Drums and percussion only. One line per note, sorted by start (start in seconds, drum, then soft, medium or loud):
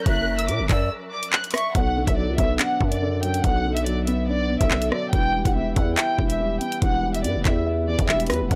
0.06 kick loud
0.06 closed hi-hat medium
0.39 closed hi-hat medium
0.48 closed hi-hat medium
0.69 kick loud
0.69 clap medium
0.69 closed hi-hat medium
1.23 closed hi-hat medium
1.33 clap loud
1.44 closed hi-hat medium
1.51 cross-stick loud
1.51 closed hi-hat medium
1.51 open hi-hat medium
1.58 closed hi-hat medium
1.75 kick loud
1.75 closed hi-hat medium
2.07 kick medium
2.07 closed hi-hat medium
2.38 kick medium
2.38 closed hi-hat medium
2.59 clap loud
2.59 closed hi-hat medium
2.81 kick medium
2.92 closed hi-hat medium
3.23 closed hi-hat medium
3.34 closed hi-hat medium
3.44 kick loud
3.44 closed hi-hat medium
3.77 closed hi-hat medium
3.86 closed hi-hat medium
4.07 closed hi-hat medium
4.61 kick loud
4.61 closed hi-hat medium
4.71 clap loud
4.82 closed hi-hat medium
4.92 cross-stick loud
5.13 kick loud
5.13 closed hi-hat medium
5.45 kick loud
5.45 closed hi-hat medium
5.76 kick loud
5.76 closed hi-hat medium
5.97 clap loud
5.97 closed hi-hat medium
6.19 kick medium
6.30 closed hi-hat medium
6.61 closed hi-hat medium
6.72 closed hi-hat medium
6.82 kick loud
6.82 closed hi-hat medium
7.14 closed hi-hat medium
7.24 closed hi-hat medium
7.45 kick medium
7.45 clap medium
7.45 closed hi-hat medium
7.99 kick medium
7.99 closed hi-hat medium
8.09 clap loud
8.20 closed hi-hat medium
8.27 cross-stick loud
8.27 closed hi-hat medium
8.27 open hi-hat medium
8.34 closed hi-hat medium
8.51 kick loud
8.51 closed hi-hat medium